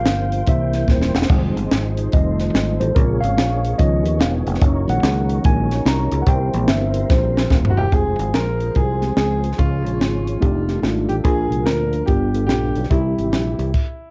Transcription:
Already playing: F3 G3 A#3 C4 F4 C5 F5 G5
0.06 G1, snare, closed hi-hat
0.32 closed hi-hat
0.46 C2 E3 G3 A#3 C4 E4 E5, kick, closed hi-hat
0.73 snare, closed hi-hat
0.88 D#1 C5, kick, snare
1.01 snare
1.15 E1, snare
1.22 snare
1.28 F1 D#3 F3 G3 G#3 D#4 G#4, kick, crash
1.56 G1, closed hi-hat
1.71 G#1, snare, closed hi-hat
1.97 closed hi-hat
2.12 F1 D#3 G3 A3 A4 D#5, kick, closed hi-hat
2.39 snare, closed hi-hat
2.54 G#1, snare, closed hi-hat
2.80 A1 C5, closed hi-hat
2.94 A#1 C#3 G#3 A#3 C4 C#4 G#4 A#4 C#5, kick, closed hi-hat
3.20 G#1 F5, closed hi-hat
3.37 A#1, snare, closed hi-hat
3.64 closed hi-hat
3.78 C#2 D#3 F3 B3 D#4 D#5, kick, closed hi-hat
4.05 D#2, closed hi-hat
4.19 E1 F5, snare, closed hi-hat
4.47 F1, closed hi-hat
4.54 snare
4.61 F#1 D#3 F#3 A#3 C#4 A#4, kick, closed hi-hat
4.88 A#1 D#3 G#3 A#3 F#5, closed hi-hat
5.03 C#2, snare, closed hi-hat
5.29 closed hi-hat
5.44 A#1 D#3 G#3 A#3 G#5, kick, closed hi-hat
5.71 snare, closed hi-hat
5.85 C2 A#5, snare, closed hi-hat
6.12 C#2, closed hi-hat
6.22 F#5
6.27 C2 E3 G3 A#3 C4 E4 A#4 C5 G5, kick, closed hi-hat
6.53 A#1 E3 G3 A#3, closed hi-hat
6.68 G1 E5, snare, closed hi-hat
6.94 closed hi-hat
7.10 A#1 C5, kick, snare
7.37 snare
7.51 D#1, kick, snare
7.65 floor tom
7.70 F#4
7.77 E1 G4
7.92 F1 F3 G#3 C4 F4 G#4 C5, kick, closed hi-hat
8.19 G#1, closed hi-hat
8.34 A#1 A#4, snare, closed hi-hat
8.60 closed hi-hat
8.75 C2 G#4, kick, closed hi-hat
9.02 G#3 C4 F4 G4, snare, closed hi-hat
9.16 C#2 G#3 C4 F4 G#4, snare, closed hi-hat
9.44 closed hi-hat
9.52 snare
9.57 C#2 C#3 F3 G#3 C#4 F4 G#4 C#5, kick, closed hi-hat
9.85 A#1, closed hi-hat
10.00 G#1, snare, closed hi-hat
10.27 closed hi-hat
10.40 F1 D#3 G3 A3 D4 D#4 F4 G4 A4, kick, closed hi-hat
10.67 A3 D4 D#4 G4, snare, closed hi-hat
10.82 G#1 A3 D4 D#4 F4, snare, closed hi-hat
11.09 A1 G4, closed hi-hat
11.24 A#1 A#2 D3 F3 A#3 D4 F4 G#4 A#4, kick, closed hi-hat
11.51 C2, closed hi-hat
11.66 D2 A#4, snare, closed hi-hat
11.93 closed hi-hat
12.06 G1 G2 F3 G3 B3 D4 F4 G4, kick, closed hi-hat
12.34 B3 D4 F4 A4, closed hi-hat
12.47 A#1 B3 D4 F4 G4 A4, snare, closed hi-hat
12.76 B1, closed hi-hat
12.83 snare
12.89 C2 C3 E3 G3 C4 D#4 E4 G4, kick, closed hi-hat
12.96 E4
13.18 G#1, closed hi-hat
13.32 A#1, snare, closed hi-hat
13.59 C2, closed hi-hat
13.74 kick, crash

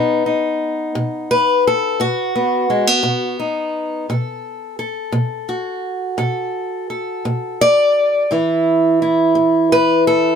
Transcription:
Already playing: B2 B3 D#4
0.26 D#4
0.95 B2
1.31 B4
1.67 A4
2.00 B2 F#4
2.36 B3
2.70 G#3
2.87 B3
3.03 B2
3.40 D#4
4.10 B2 A4
4.79 A4
5.12 B2
5.49 F#4
6.18 B2 A4
6.90 A4
7.25 B2
7.61 D5
8.31 A2 E3 E4
9.02 E4
9.35 A2
9.72 B4
10.07 A4

